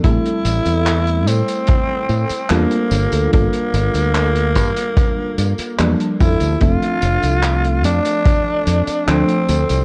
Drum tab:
HH |xxxxxxxxx-xxxxxx|xxxxxxxxx-xxxxxx|xxxxxxxxx-xxxxxx|
TB |x-xxx-xxx-xxx-xx|x-xxx-xxx-xxx-xx|x-xxx-xxx-xxx-xx|
CP |----x-------x---|----x-------x---|----x-------x---|
BD |o-------o-------|o-----o-o-----o-|o-------o-------|